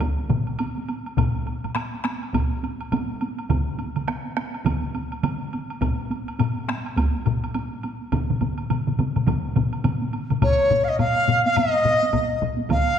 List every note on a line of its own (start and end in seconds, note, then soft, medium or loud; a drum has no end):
0.00 taiko loud
0.00 taiko high medium
0.00 high woodblock medium
0.19 taiko high soft
0.30 taiko low-mid medium
0.30 taiko mid medium
0.30 taiko high soft
0.30 high woodblock soft
0.47 taiko high soft
0.47 high woodblock soft
0.59 taiko high medium
0.59 high woodblock medium
0.77 taiko high soft
0.88 taiko high soft
0.88 high woodblock soft
1.06 taiko high soft
1.06 high woodblock soft
1.17 taiko medium
1.17 taiko low-mid loud
1.17 taiko high medium
1.17 high woodblock medium
1.34 taiko high soft
1.46 taiko high medium
1.46 high woodblock soft
1.64 taiko low-mid medium
1.64 taiko high soft
1.64 high woodblock soft
1.75 taiko rim medium
1.75 taiko high medium
1.75 high woodblock medium
1.94 taiko high soft
2.05 taiko rim medium
2.05 taiko high medium
2.05 high woodblock soft
2.23 taiko high soft
2.23 high woodblock soft
2.34 taiko medium
2.34 taiko low-mid medium
2.34 taiko high medium
2.34 high woodblock medium
2.53 taiko high soft
2.64 taiko high medium
2.64 high woodblock soft
2.81 taiko high soft
2.81 high woodblock soft
2.92 taiko low-mid medium
2.92 taiko high medium
2.92 high woodblock medium
3.21 taiko high medium
3.21 high woodblock soft
3.39 taiko high soft
3.39 high woodblock soft
3.50 taiko loud
3.50 taiko mid medium
3.50 taiko high medium
3.50 high woodblock medium
3.68 taiko high soft
3.79 taiko high medium
3.79 high woodblock soft
3.96 taiko mid medium
3.96 taiko high soft
3.96 high woodblock soft
4.08 taiko rim medium
4.08 taiko high medium
4.08 high woodblock soft
4.25 taiko high soft
4.37 taiko rim medium
4.37 taiko high medium
4.37 high woodblock soft
4.54 taiko high soft
4.54 high woodblock soft
4.65 taiko medium
4.65 taiko mid loud
4.65 taiko high medium
4.65 high woodblock medium
4.84 taiko high soft
4.95 taiko high medium
4.95 high woodblock soft
5.12 taiko high soft
5.12 high woodblock soft
5.23 taiko mid loud
5.23 taiko high medium
5.23 high woodblock medium
5.53 taiko high medium
5.53 high woodblock soft
5.70 taiko high soft
5.70 high woodblock soft
5.81 taiko medium
5.81 taiko low-mid medium
5.81 taiko high medium
5.81 high woodblock medium
5.99 taiko high soft
6.10 taiko high soft
6.10 high woodblock soft
6.28 taiko high soft
6.28 high woodblock soft
6.39 taiko low-mid medium
6.39 taiko high medium
6.39 high woodblock medium
6.57 taiko high soft
6.68 taiko rim medium
6.68 taiko high medium
6.68 high woodblock soft
6.85 taiko high soft
6.85 high woodblock soft
6.96 taiko medium
6.96 taiko high medium
6.96 high woodblock medium
7.15 taiko high soft
7.26 taiko low-mid medium
7.26 taiko high soft
7.26 high woodblock soft
7.43 taiko high soft
7.43 high woodblock soft
7.54 taiko high medium
7.54 high woodblock medium
7.83 taiko high soft
7.83 high woodblock soft
8.01 taiko high soft
8.12 taiko medium
8.12 taiko low-mid medium
8.12 taiko mid medium
8.12 taiko high medium
8.12 high woodblock medium
8.30 taiko low-mid medium
8.30 taiko mid medium
8.30 taiko high soft
8.41 taiko low-mid medium
8.41 taiko mid medium
8.41 taiko high soft
8.41 high woodblock soft
8.58 high woodblock soft
8.70 taiko low-mid medium
8.70 taiko mid medium
8.70 taiko high medium
8.70 high woodblock soft
8.87 taiko low-mid medium
8.87 taiko mid medium
8.87 taiko high soft
8.99 taiko low-mid medium
8.99 taiko mid medium
8.99 taiko high medium
8.99 high woodblock soft
9.16 taiko low-mid medium
9.16 taiko mid medium
9.16 taiko high soft
9.16 high woodblock soft
9.27 taiko medium
9.27 taiko low-mid medium
9.27 taiko mid loud
9.27 taiko high medium
9.27 high woodblock medium
9.45 taiko high soft
9.56 taiko low-mid medium
9.56 taiko mid medium
9.56 taiko high soft
9.56 high woodblock soft
9.73 taiko high soft
9.73 high woodblock soft
9.84 taiko low-mid medium
9.84 taiko mid medium
9.84 taiko high medium
9.84 high woodblock medium
10.02 taiko high soft
10.13 taiko high medium
10.13 high woodblock soft
10.30 taiko low-mid medium
10.30 taiko mid medium
10.30 taiko high soft
10.30 high woodblock soft
10.42 10.85 C#5 medium
10.42 taiko medium
10.42 taiko low-mid medium
10.42 taiko high medium
10.42 high woodblock medium
10.71 taiko low-mid medium
10.71 taiko high medium
10.84 10.90 F5 medium
10.88 10.98 D#5 medium
10.99 11.42 F5 medium
10.99 taiko low-mid medium
10.99 taiko high medium
10.99 high woodblock soft
11.28 taiko low-mid medium
11.28 taiko high medium
11.45 11.58 F5 medium
11.45 taiko high medium
11.56 12.42 D#5 medium
11.56 taiko low-mid medium
11.56 taiko high medium
11.56 high woodblock medium
11.85 taiko low-mid medium
11.85 taiko high medium
12.03 taiko high medium
12.13 taiko medium
12.13 taiko low-mid medium
12.13 taiko high medium
12.13 high woodblock soft
12.42 taiko low-mid loud
12.59 taiko high soft
12.70 12.99 F5 medium
12.70 taiko loud
12.70 taiko mid medium
12.70 taiko high medium
12.70 high woodblock soft